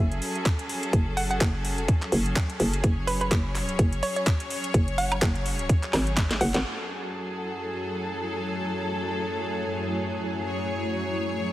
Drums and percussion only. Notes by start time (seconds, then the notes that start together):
0.12 closed hi-hat
0.22 open hi-hat
0.35 closed hi-hat
0.46 kick, clap, closed hi-hat
0.59 closed hi-hat
0.69 open hi-hat
0.83 closed hi-hat
0.93 kick, closed hi-hat
1.17 open hi-hat
1.31 closed hi-hat
1.41 kick, clap, closed hi-hat
1.65 open hi-hat
1.78 closed hi-hat
1.88 kick, closed hi-hat
2.02 clap, closed hi-hat
2.12 open hi-hat
2.26 closed hi-hat
2.36 kick, clap, closed hi-hat
2.50 closed hi-hat
2.60 open hi-hat
2.73 closed hi-hat
2.84 kick, closed hi-hat
3.08 open hi-hat
3.21 closed hi-hat
3.31 kick, clap, closed hi-hat
3.55 clap, open hi-hat
3.69 closed hi-hat
3.79 kick, closed hi-hat
3.93 closed hi-hat
4.03 open hi-hat
4.16 closed hi-hat
4.27 kick, clap, closed hi-hat
4.40 closed hi-hat
4.50 open hi-hat
4.64 closed hi-hat
4.74 kick, closed hi-hat
4.88 closed hi-hat
4.98 open hi-hat
5.12 closed hi-hat, high woodblock
5.22 kick, clap, closed hi-hat
5.35 closed hi-hat
5.46 open hi-hat
5.59 closed hi-hat
5.69 kick, closed hi-hat
5.83 clap, closed hi-hat
5.93 snare, open hi-hat, high woodblock
6.07 closed hi-hat
6.17 kick, snare, clap, closed hi-hat
6.31 snare, closed hi-hat
6.41 open hi-hat
6.54 snare, closed hi-hat